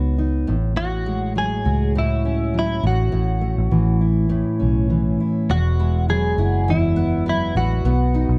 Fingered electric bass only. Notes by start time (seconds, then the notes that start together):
Already playing: C#2
0.49 A1
1.66 C#2
2.84 A1
3.13 A1
3.58 A1
3.72 A1
4.62 B1
5.50 E1
6.38 F#1
7.55 A1
7.85 B1
8.29 B1